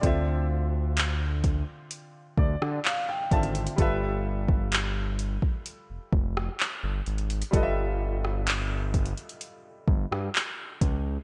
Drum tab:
HH |x-------x---x---x-----------xxxx|x-------x---x---x-----------xxxx|x-------x---xxxxx-----------x---|
CP |--------x---------------x-------|--------x---------------x-------|--------x---------------x-------|
SD |----------------------r---------|----------------------r---------|------r---------------r---------|
BD |o-----------o-------o-------o---|o-----o-------o-----o-----------|o-----------o-------o-------o---|